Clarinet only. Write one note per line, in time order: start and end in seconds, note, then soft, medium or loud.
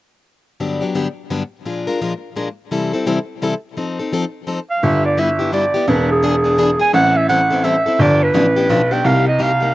4.70 4.85 F5 medium
4.84 5.04 E5 medium
5.05 5.21 D5 medium
5.19 5.53 E5 medium
5.53 5.91 D5 medium
5.89 6.10 B4 medium
6.11 6.77 G#4 medium
6.81 6.93 G#5 medium
6.94 7.18 F#5 loud
7.17 7.28 E5 medium
7.29 7.66 F#5 medium
7.64 8.03 E5 medium
8.02 8.25 D5 medium
8.24 8.94 B4 medium
8.93 9.08 G5 medium
9.06 9.27 F5 medium
9.28 9.44 D#5 medium
9.42 9.74 F5 medium